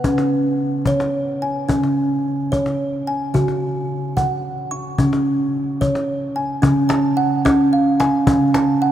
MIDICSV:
0, 0, Header, 1, 3, 480
1, 0, Start_track
1, 0, Key_signature, 7, "major"
1, 0, Tempo, 548446
1, 39, Time_signature, 6, 3, 24, 8
1, 7806, End_track
2, 0, Start_track
2, 0, Title_t, "Kalimba"
2, 0, Program_c, 0, 108
2, 0, Note_on_c, 0, 78, 50
2, 38, Note_on_c, 0, 61, 56
2, 42, Note_on_c, 0, 49, 66
2, 281, Note_off_c, 0, 78, 0
2, 520, Note_off_c, 0, 61, 0
2, 763, Note_on_c, 0, 73, 69
2, 1244, Note_on_c, 0, 80, 48
2, 1245, Note_off_c, 0, 73, 0
2, 1458, Note_off_c, 0, 49, 0
2, 1475, Note_on_c, 0, 49, 65
2, 1476, Note_on_c, 0, 61, 54
2, 1962, Note_off_c, 0, 61, 0
2, 1966, Note_off_c, 0, 80, 0
2, 2205, Note_on_c, 0, 73, 62
2, 2687, Note_off_c, 0, 73, 0
2, 2690, Note_on_c, 0, 80, 50
2, 2895, Note_off_c, 0, 49, 0
2, 2923, Note_on_c, 0, 49, 65
2, 2927, Note_on_c, 0, 66, 59
2, 3170, Note_off_c, 0, 80, 0
2, 3409, Note_off_c, 0, 66, 0
2, 3647, Note_on_c, 0, 78, 61
2, 4123, Note_on_c, 0, 85, 53
2, 4129, Note_off_c, 0, 78, 0
2, 4338, Note_off_c, 0, 49, 0
2, 4362, Note_on_c, 0, 61, 54
2, 4375, Note_on_c, 0, 49, 59
2, 4607, Note_off_c, 0, 85, 0
2, 4846, Note_off_c, 0, 61, 0
2, 5086, Note_on_c, 0, 73, 59
2, 5565, Note_on_c, 0, 80, 52
2, 5567, Note_off_c, 0, 73, 0
2, 5782, Note_off_c, 0, 49, 0
2, 5795, Note_on_c, 0, 61, 71
2, 5802, Note_on_c, 0, 49, 77
2, 6030, Note_on_c, 0, 81, 60
2, 6046, Note_off_c, 0, 80, 0
2, 6274, Note_on_c, 0, 78, 63
2, 6281, Note_off_c, 0, 61, 0
2, 6521, Note_on_c, 0, 61, 82
2, 6757, Note_off_c, 0, 81, 0
2, 6764, Note_on_c, 0, 77, 55
2, 6998, Note_off_c, 0, 78, 0
2, 7000, Note_on_c, 0, 80, 63
2, 7002, Note_off_c, 0, 61, 0
2, 7212, Note_off_c, 0, 49, 0
2, 7239, Note_on_c, 0, 61, 65
2, 7240, Note_on_c, 0, 49, 78
2, 7481, Note_on_c, 0, 81, 61
2, 7482, Note_off_c, 0, 77, 0
2, 7717, Note_on_c, 0, 78, 61
2, 7720, Note_off_c, 0, 61, 0
2, 7720, Note_off_c, 0, 80, 0
2, 7806, Note_off_c, 0, 49, 0
2, 7806, Note_off_c, 0, 78, 0
2, 7806, Note_off_c, 0, 81, 0
2, 7806, End_track
3, 0, Start_track
3, 0, Title_t, "Cajon"
3, 36, Note_on_c, 9, 36, 49
3, 124, Note_off_c, 9, 36, 0
3, 157, Note_on_c, 9, 38, 42
3, 244, Note_off_c, 9, 38, 0
3, 748, Note_on_c, 9, 36, 47
3, 836, Note_off_c, 9, 36, 0
3, 876, Note_on_c, 9, 38, 40
3, 963, Note_off_c, 9, 38, 0
3, 1125, Note_on_c, 9, 38, 13
3, 1212, Note_off_c, 9, 38, 0
3, 1482, Note_on_c, 9, 36, 49
3, 1570, Note_off_c, 9, 36, 0
3, 1605, Note_on_c, 9, 38, 34
3, 1693, Note_off_c, 9, 38, 0
3, 2211, Note_on_c, 9, 36, 44
3, 2298, Note_off_c, 9, 36, 0
3, 2327, Note_on_c, 9, 38, 36
3, 2415, Note_off_c, 9, 38, 0
3, 2566, Note_on_c, 9, 38, 12
3, 2654, Note_off_c, 9, 38, 0
3, 2931, Note_on_c, 9, 36, 41
3, 3018, Note_off_c, 9, 36, 0
3, 3047, Note_on_c, 9, 38, 33
3, 3135, Note_off_c, 9, 38, 0
3, 3650, Note_on_c, 9, 36, 47
3, 3737, Note_off_c, 9, 36, 0
3, 4008, Note_on_c, 9, 38, 14
3, 4095, Note_off_c, 9, 38, 0
3, 4362, Note_on_c, 9, 36, 49
3, 4450, Note_off_c, 9, 36, 0
3, 4488, Note_on_c, 9, 38, 39
3, 4576, Note_off_c, 9, 38, 0
3, 4723, Note_on_c, 9, 38, 16
3, 4810, Note_off_c, 9, 38, 0
3, 4851, Note_on_c, 9, 38, 14
3, 4939, Note_off_c, 9, 38, 0
3, 5090, Note_on_c, 9, 36, 48
3, 5178, Note_off_c, 9, 36, 0
3, 5210, Note_on_c, 9, 38, 37
3, 5297, Note_off_c, 9, 38, 0
3, 5690, Note_on_c, 9, 38, 16
3, 5777, Note_off_c, 9, 38, 0
3, 5804, Note_on_c, 9, 36, 54
3, 5891, Note_off_c, 9, 36, 0
3, 5927, Note_on_c, 9, 38, 19
3, 6014, Note_off_c, 9, 38, 0
3, 6038, Note_on_c, 9, 38, 62
3, 6126, Note_off_c, 9, 38, 0
3, 6528, Note_on_c, 9, 36, 59
3, 6528, Note_on_c, 9, 38, 55
3, 6615, Note_off_c, 9, 36, 0
3, 6615, Note_off_c, 9, 38, 0
3, 7004, Note_on_c, 9, 38, 60
3, 7091, Note_off_c, 9, 38, 0
3, 7237, Note_on_c, 9, 36, 66
3, 7325, Note_off_c, 9, 36, 0
3, 7358, Note_on_c, 9, 38, 21
3, 7445, Note_off_c, 9, 38, 0
3, 7477, Note_on_c, 9, 38, 66
3, 7565, Note_off_c, 9, 38, 0
3, 7806, End_track
0, 0, End_of_file